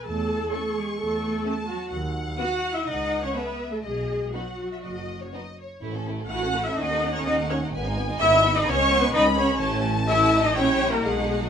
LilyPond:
<<
  \new Staff \with { instrumentName = "Violin section" } { \time 4/4 \key b \mixolydian \tempo 4 = 126 a''4 cis'''2 a''4 | fis''2 fis''4 e''4 | dis''4 fis''8. e''16 dis''8. cis''16 dis''8 cis''8 | r2 fis''2 |
gis''4 b''4 cis'''4 b''4 | a''2 g''4 fis''4 | }
  \new Staff \with { instrumentName = "Viola section" } { \time 4/4 \key b \mixolydian a'4. gis'8 a'4. fis'8 | r4 fis''8. e''16 dis''8. cis''16 b'8. a'16 | gis'4 fis'2 r4 | r4 fis''8. e''16 dis''8. cis''16 dis''8 cis''8 |
r4 e''8. dis''16 cis''8. b'16 dis''8 cis''8 | r4 e''8. dis''16 cis''8. ais'16 gis'8. fis'16 | }
  \new Staff \with { instrumentName = "Cello section" } { \time 4/4 \key b \mixolydian a4. gis8 a4. fis8 | r4 fis'8. e'16 dis'8. cis'16 b8. a16 | gis4 fis2 r4 | r4 fis'8. e'16 dis'8. cis'16 dis'8 cis'8 |
r4 e'8. dis'16 cis'8. b16 dis'8 cis'8 | r4 e'8. dis'16 cis'8. ais16 gis8. fis16 | }
  \new Staff \with { instrumentName = "Violin section" } { \time 4/4 \key b \mixolydian << { r4 cis'8. r4 r16 cis'8. r16 | r4 b8. r4 r16 cis'8. r16 | r4 dis'8. r4 r16 dis'8. r16 | e'16 a'16 e'16 a'16 e'16 a'16 e'16 a'16 cis'16 dis'16 cis'16 dis'16 cis'16 dis'16 cis'16 dis'16 |
b16 dis'16 b16 dis'16 b16 dis'16 b16 dis'16 b16 cis'16 b16 cis'16 b16 cis'16 b16 cis'16 | cis'4 cis'8 dis'8 e'4 dis'4 | } \\ { r4 a8. r4 r16 a8. r16 | r4 b8. r4 r16 a8. r16 | r4 b8. r4 r16 b8. r16 | a16 cis'16 a16 cis'16 a16 cis'16 a16 cis'16 cis'16 a16 cis'16 a16 cis'16 a16 cis'16 a16 |
b16 gis16 b16 gis16 b16 gis16 b16 gis16 cis'16 gis16 cis'16 gis16 cis'16 gis16 cis'16 gis16 | a4 a4 g4 a4 | } >> }
  \new Staff \with { instrumentName = "Double bass section" } { \clef bass \time 4/4 \key b \mixolydian e,4 r4 e,4 r4 | dis,4 r4 cis,4 r4 | b,,4 r4 fis,,4 r4 | a,,4 a,,4 dis,4 dis,4 |
gis,,4 gis,,4 cis,4 cis,4 | a,,2 ais,,4 b,,4 | }
>>